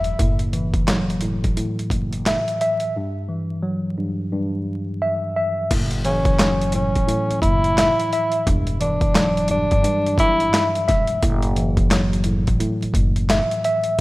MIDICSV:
0, 0, Header, 1, 6, 480
1, 0, Start_track
1, 0, Tempo, 689655
1, 133, Time_signature, 4, 2, 24, 8
1, 9747, End_track
2, 0, Start_track
2, 0, Title_t, "Tenor saxophone"
2, 0, Program_c, 0, 66
2, 4212, Note_on_c, 0, 61, 87
2, 4665, Note_off_c, 0, 61, 0
2, 4699, Note_on_c, 0, 61, 78
2, 5148, Note_off_c, 0, 61, 0
2, 5161, Note_on_c, 0, 64, 89
2, 5859, Note_off_c, 0, 64, 0
2, 6133, Note_on_c, 0, 62, 87
2, 6585, Note_off_c, 0, 62, 0
2, 6617, Note_on_c, 0, 62, 91
2, 7067, Note_off_c, 0, 62, 0
2, 7095, Note_on_c, 0, 64, 95
2, 7458, Note_off_c, 0, 64, 0
2, 9747, End_track
3, 0, Start_track
3, 0, Title_t, "Tine electric piano"
3, 0, Program_c, 1, 4
3, 0, Control_c, 1, 64, 127
3, 0, Note_on_c, 1, 43, 87
3, 0, Note_on_c, 1, 52, 76
3, 0, Note_on_c, 1, 54, 87
3, 0, Note_on_c, 1, 76, 88
3, 129, Note_off_c, 1, 52, 0
3, 129, Note_off_c, 1, 54, 0
3, 131, Note_off_c, 1, 43, 0
3, 133, Note_off_c, 1, 76, 0
3, 133, Note_on_c, 1, 45, 93
3, 140, Control_c, 1, 64, 0
3, 283, Control_c, 1, 64, 127
3, 369, Note_on_c, 1, 52, 78
3, 614, Note_on_c, 1, 54, 90
3, 842, Note_off_c, 1, 45, 0
3, 850, Note_on_c, 1, 45, 81
3, 1079, Note_off_c, 1, 45, 0
3, 1087, Note_on_c, 1, 45, 84
3, 1581, Note_on_c, 1, 76, 87
3, 1811, Note_off_c, 1, 76, 0
3, 1819, Note_on_c, 1, 76, 86
3, 2050, Note_off_c, 1, 45, 0
3, 2051, Note_off_c, 1, 52, 0
3, 2054, Note_off_c, 1, 54, 0
3, 2056, Note_off_c, 1, 76, 0
3, 2062, Control_c, 1, 64, 0
3, 2063, Note_on_c, 1, 43, 89
3, 2185, Control_c, 1, 64, 127
3, 2286, Note_on_c, 1, 52, 77
3, 2523, Note_on_c, 1, 54, 84
3, 2758, Note_off_c, 1, 43, 0
3, 2767, Note_on_c, 1, 43, 78
3, 3000, Note_off_c, 1, 43, 0
3, 3008, Note_on_c, 1, 43, 88
3, 3492, Note_on_c, 1, 76, 93
3, 3724, Note_off_c, 1, 76, 0
3, 3732, Note_on_c, 1, 76, 88
3, 3968, Note_off_c, 1, 54, 0
3, 3969, Note_off_c, 1, 52, 0
3, 3970, Note_off_c, 1, 43, 0
3, 3973, Note_off_c, 1, 76, 0
3, 3973, Note_on_c, 1, 45, 89
3, 3981, Control_c, 1, 64, 0
3, 4110, Control_c, 1, 64, 127
3, 4208, Note_on_c, 1, 52, 81
3, 4454, Note_on_c, 1, 54, 91
3, 4680, Note_off_c, 1, 45, 0
3, 4689, Note_on_c, 1, 45, 77
3, 4918, Note_off_c, 1, 45, 0
3, 4926, Note_on_c, 1, 45, 87
3, 5420, Note_on_c, 1, 76, 90
3, 5650, Note_off_c, 1, 76, 0
3, 5659, Note_on_c, 1, 76, 88
3, 5890, Note_off_c, 1, 45, 0
3, 5890, Note_off_c, 1, 52, 0
3, 5894, Note_off_c, 1, 54, 0
3, 5896, Note_off_c, 1, 76, 0
3, 5902, Control_c, 1, 64, 0
3, 5903, Note_on_c, 1, 43, 90
3, 6026, Control_c, 1, 64, 127
3, 6126, Note_on_c, 1, 52, 79
3, 6364, Note_on_c, 1, 54, 85
3, 6597, Note_off_c, 1, 43, 0
3, 6605, Note_on_c, 1, 43, 79
3, 6839, Note_off_c, 1, 43, 0
3, 6847, Note_on_c, 1, 43, 90
3, 7332, Note_on_c, 1, 76, 100
3, 7564, Note_off_c, 1, 76, 0
3, 7572, Note_on_c, 1, 76, 90
3, 7808, Note_off_c, 1, 54, 0
3, 7809, Note_off_c, 1, 52, 0
3, 7810, Note_off_c, 1, 43, 0
3, 7812, Note_off_c, 1, 76, 0
3, 7813, Note_on_c, 1, 45, 93
3, 7821, Control_c, 1, 64, 0
3, 7950, Control_c, 1, 64, 127
3, 8048, Note_on_c, 1, 52, 80
3, 8295, Note_on_c, 1, 54, 92
3, 8522, Note_off_c, 1, 45, 0
3, 8530, Note_on_c, 1, 45, 80
3, 8760, Note_off_c, 1, 45, 0
3, 8768, Note_on_c, 1, 45, 88
3, 9262, Note_on_c, 1, 76, 88
3, 9491, Note_off_c, 1, 76, 0
3, 9499, Note_on_c, 1, 76, 86
3, 9730, Note_off_c, 1, 45, 0
3, 9730, Note_off_c, 1, 52, 0
3, 9734, Note_off_c, 1, 54, 0
3, 9736, Note_off_c, 1, 76, 0
3, 9742, Control_c, 1, 64, 0
3, 9747, End_track
4, 0, Start_track
4, 0, Title_t, "Upright bass"
4, 0, Program_c, 2, 32
4, 0, Note_on_c, 2, 28, 92
4, 86, Note_off_c, 2, 28, 0
4, 137, Note_on_c, 2, 30, 98
4, 974, Note_off_c, 2, 30, 0
4, 1007, Note_on_c, 2, 33, 84
4, 1077, Note_off_c, 2, 33, 0
4, 1326, Note_on_c, 2, 30, 92
4, 1633, Note_off_c, 2, 30, 0
4, 3976, Note_on_c, 2, 30, 101
4, 4814, Note_off_c, 2, 30, 0
4, 4846, Note_on_c, 2, 33, 88
4, 4917, Note_off_c, 2, 33, 0
4, 5166, Note_on_c, 2, 30, 97
4, 5472, Note_off_c, 2, 30, 0
4, 5896, Note_on_c, 2, 28, 107
4, 6734, Note_off_c, 2, 28, 0
4, 6765, Note_on_c, 2, 31, 90
4, 6836, Note_off_c, 2, 31, 0
4, 7086, Note_on_c, 2, 31, 96
4, 7277, Note_off_c, 2, 31, 0
4, 7581, Note_on_c, 2, 28, 95
4, 7766, Note_off_c, 2, 28, 0
4, 7816, Note_on_c, 2, 30, 108
4, 8654, Note_off_c, 2, 30, 0
4, 8686, Note_on_c, 2, 33, 86
4, 8757, Note_off_c, 2, 33, 0
4, 9007, Note_on_c, 2, 30, 94
4, 9313, Note_off_c, 2, 30, 0
4, 9747, End_track
5, 0, Start_track
5, 0, Title_t, "Muted upright bass strokes"
5, 1245, Note_on_c, 9, 29, 48
5, 1315, Note_off_c, 9, 29, 0
5, 5085, Note_on_c, 9, 29, 49
5, 5154, Note_off_c, 9, 29, 0
5, 7006, Note_on_c, 9, 29, 50
5, 7075, Note_off_c, 9, 29, 0
5, 8928, Note_on_c, 9, 29, 51
5, 8997, Note_off_c, 9, 29, 0
5, 9747, End_track
6, 0, Start_track
6, 0, Title_t, "Drums"
6, 29, Note_on_c, 9, 42, 56
6, 99, Note_off_c, 9, 42, 0
6, 134, Note_on_c, 9, 36, 107
6, 134, Note_on_c, 9, 42, 101
6, 203, Note_off_c, 9, 36, 0
6, 204, Note_off_c, 9, 42, 0
6, 273, Note_on_c, 9, 42, 53
6, 342, Note_off_c, 9, 42, 0
6, 370, Note_on_c, 9, 42, 74
6, 440, Note_off_c, 9, 42, 0
6, 512, Note_on_c, 9, 36, 95
6, 513, Note_on_c, 9, 42, 47
6, 582, Note_off_c, 9, 36, 0
6, 582, Note_off_c, 9, 42, 0
6, 610, Note_on_c, 9, 39, 87
6, 611, Note_on_c, 9, 38, 114
6, 617, Note_on_c, 9, 42, 92
6, 679, Note_off_c, 9, 39, 0
6, 680, Note_off_c, 9, 38, 0
6, 687, Note_off_c, 9, 42, 0
6, 765, Note_on_c, 9, 42, 52
6, 835, Note_off_c, 9, 42, 0
6, 840, Note_on_c, 9, 42, 82
6, 909, Note_off_c, 9, 42, 0
6, 1002, Note_on_c, 9, 42, 54
6, 1004, Note_on_c, 9, 36, 83
6, 1071, Note_off_c, 9, 42, 0
6, 1073, Note_off_c, 9, 36, 0
6, 1092, Note_on_c, 9, 42, 100
6, 1162, Note_off_c, 9, 42, 0
6, 1246, Note_on_c, 9, 42, 52
6, 1316, Note_off_c, 9, 42, 0
6, 1323, Note_on_c, 9, 36, 88
6, 1331, Note_on_c, 9, 42, 77
6, 1393, Note_off_c, 9, 36, 0
6, 1400, Note_off_c, 9, 42, 0
6, 1479, Note_on_c, 9, 42, 56
6, 1549, Note_off_c, 9, 42, 0
6, 1573, Note_on_c, 9, 39, 88
6, 1574, Note_on_c, 9, 38, 105
6, 1579, Note_on_c, 9, 42, 93
6, 1643, Note_off_c, 9, 39, 0
6, 1644, Note_off_c, 9, 38, 0
6, 1648, Note_off_c, 9, 42, 0
6, 1725, Note_on_c, 9, 42, 54
6, 1795, Note_off_c, 9, 42, 0
6, 1816, Note_on_c, 9, 42, 70
6, 1886, Note_off_c, 9, 42, 0
6, 1948, Note_on_c, 9, 42, 56
6, 2018, Note_off_c, 9, 42, 0
6, 3972, Note_on_c, 9, 49, 100
6, 3973, Note_on_c, 9, 36, 111
6, 3973, Note_on_c, 9, 42, 101
6, 4042, Note_off_c, 9, 42, 0
6, 4042, Note_off_c, 9, 49, 0
6, 4043, Note_off_c, 9, 36, 0
6, 4111, Note_on_c, 9, 42, 58
6, 4181, Note_off_c, 9, 42, 0
6, 4208, Note_on_c, 9, 42, 77
6, 4278, Note_off_c, 9, 42, 0
6, 4351, Note_on_c, 9, 42, 48
6, 4352, Note_on_c, 9, 36, 106
6, 4421, Note_off_c, 9, 36, 0
6, 4421, Note_off_c, 9, 42, 0
6, 4448, Note_on_c, 9, 39, 90
6, 4449, Note_on_c, 9, 38, 112
6, 4455, Note_on_c, 9, 42, 95
6, 4518, Note_off_c, 9, 39, 0
6, 4519, Note_off_c, 9, 38, 0
6, 4525, Note_off_c, 9, 42, 0
6, 4604, Note_on_c, 9, 42, 53
6, 4673, Note_off_c, 9, 42, 0
6, 4678, Note_on_c, 9, 42, 86
6, 4748, Note_off_c, 9, 42, 0
6, 4840, Note_on_c, 9, 42, 56
6, 4843, Note_on_c, 9, 36, 84
6, 4910, Note_off_c, 9, 42, 0
6, 4913, Note_off_c, 9, 36, 0
6, 4931, Note_on_c, 9, 42, 99
6, 5001, Note_off_c, 9, 42, 0
6, 5085, Note_on_c, 9, 42, 55
6, 5154, Note_off_c, 9, 42, 0
6, 5163, Note_on_c, 9, 36, 92
6, 5170, Note_on_c, 9, 42, 81
6, 5233, Note_off_c, 9, 36, 0
6, 5240, Note_off_c, 9, 42, 0
6, 5319, Note_on_c, 9, 42, 55
6, 5388, Note_off_c, 9, 42, 0
6, 5413, Note_on_c, 9, 39, 89
6, 5414, Note_on_c, 9, 38, 110
6, 5418, Note_on_c, 9, 42, 96
6, 5483, Note_off_c, 9, 39, 0
6, 5484, Note_off_c, 9, 38, 0
6, 5488, Note_off_c, 9, 42, 0
6, 5565, Note_on_c, 9, 42, 56
6, 5635, Note_off_c, 9, 42, 0
6, 5656, Note_on_c, 9, 42, 75
6, 5726, Note_off_c, 9, 42, 0
6, 5788, Note_on_c, 9, 42, 56
6, 5858, Note_off_c, 9, 42, 0
6, 5894, Note_on_c, 9, 36, 109
6, 5894, Note_on_c, 9, 42, 105
6, 5963, Note_off_c, 9, 36, 0
6, 5964, Note_off_c, 9, 42, 0
6, 6033, Note_on_c, 9, 42, 55
6, 6102, Note_off_c, 9, 42, 0
6, 6129, Note_on_c, 9, 42, 77
6, 6199, Note_off_c, 9, 42, 0
6, 6271, Note_on_c, 9, 42, 48
6, 6272, Note_on_c, 9, 36, 102
6, 6341, Note_off_c, 9, 36, 0
6, 6341, Note_off_c, 9, 42, 0
6, 6369, Note_on_c, 9, 39, 87
6, 6370, Note_on_c, 9, 38, 109
6, 6376, Note_on_c, 9, 42, 97
6, 6438, Note_off_c, 9, 39, 0
6, 6439, Note_off_c, 9, 38, 0
6, 6445, Note_off_c, 9, 42, 0
6, 6523, Note_on_c, 9, 42, 53
6, 6593, Note_off_c, 9, 42, 0
6, 6598, Note_on_c, 9, 42, 84
6, 6667, Note_off_c, 9, 42, 0
6, 6759, Note_on_c, 9, 42, 55
6, 6763, Note_on_c, 9, 36, 86
6, 6828, Note_off_c, 9, 42, 0
6, 6832, Note_off_c, 9, 36, 0
6, 6850, Note_on_c, 9, 42, 100
6, 6920, Note_off_c, 9, 42, 0
6, 7005, Note_on_c, 9, 42, 54
6, 7075, Note_off_c, 9, 42, 0
6, 7083, Note_on_c, 9, 36, 93
6, 7090, Note_on_c, 9, 42, 79
6, 7153, Note_off_c, 9, 36, 0
6, 7160, Note_off_c, 9, 42, 0
6, 7239, Note_on_c, 9, 42, 58
6, 7309, Note_off_c, 9, 42, 0
6, 7333, Note_on_c, 9, 39, 87
6, 7334, Note_on_c, 9, 38, 110
6, 7338, Note_on_c, 9, 42, 97
6, 7402, Note_off_c, 9, 39, 0
6, 7403, Note_off_c, 9, 38, 0
6, 7408, Note_off_c, 9, 42, 0
6, 7485, Note_on_c, 9, 42, 57
6, 7554, Note_off_c, 9, 42, 0
6, 7576, Note_on_c, 9, 38, 39
6, 7576, Note_on_c, 9, 42, 74
6, 7578, Note_on_c, 9, 36, 95
6, 7645, Note_off_c, 9, 38, 0
6, 7646, Note_off_c, 9, 42, 0
6, 7648, Note_off_c, 9, 36, 0
6, 7708, Note_on_c, 9, 42, 57
6, 7777, Note_off_c, 9, 42, 0
6, 7813, Note_on_c, 9, 36, 109
6, 7813, Note_on_c, 9, 42, 105
6, 7882, Note_off_c, 9, 42, 0
6, 7883, Note_off_c, 9, 36, 0
6, 7952, Note_on_c, 9, 42, 57
6, 8021, Note_off_c, 9, 42, 0
6, 8049, Note_on_c, 9, 42, 78
6, 8118, Note_off_c, 9, 42, 0
6, 8192, Note_on_c, 9, 36, 100
6, 8192, Note_on_c, 9, 42, 50
6, 8262, Note_off_c, 9, 36, 0
6, 8262, Note_off_c, 9, 42, 0
6, 8288, Note_on_c, 9, 39, 91
6, 8289, Note_on_c, 9, 38, 113
6, 8295, Note_on_c, 9, 42, 98
6, 8358, Note_off_c, 9, 39, 0
6, 8359, Note_off_c, 9, 38, 0
6, 8365, Note_off_c, 9, 42, 0
6, 8444, Note_on_c, 9, 42, 52
6, 8513, Note_off_c, 9, 42, 0
6, 8518, Note_on_c, 9, 42, 82
6, 8587, Note_off_c, 9, 42, 0
6, 8680, Note_on_c, 9, 42, 55
6, 8684, Note_on_c, 9, 36, 86
6, 8750, Note_off_c, 9, 42, 0
6, 8753, Note_off_c, 9, 36, 0
6, 8771, Note_on_c, 9, 42, 100
6, 8841, Note_off_c, 9, 42, 0
6, 8926, Note_on_c, 9, 42, 53
6, 8996, Note_off_c, 9, 42, 0
6, 9004, Note_on_c, 9, 36, 87
6, 9011, Note_on_c, 9, 42, 82
6, 9074, Note_off_c, 9, 36, 0
6, 9081, Note_off_c, 9, 42, 0
6, 9160, Note_on_c, 9, 42, 56
6, 9229, Note_off_c, 9, 42, 0
6, 9253, Note_on_c, 9, 39, 85
6, 9254, Note_on_c, 9, 38, 110
6, 9259, Note_on_c, 9, 42, 96
6, 9323, Note_off_c, 9, 39, 0
6, 9324, Note_off_c, 9, 38, 0
6, 9328, Note_off_c, 9, 42, 0
6, 9406, Note_on_c, 9, 42, 56
6, 9475, Note_off_c, 9, 42, 0
6, 9496, Note_on_c, 9, 42, 73
6, 9566, Note_off_c, 9, 42, 0
6, 9629, Note_on_c, 9, 42, 58
6, 9699, Note_off_c, 9, 42, 0
6, 9747, End_track
0, 0, End_of_file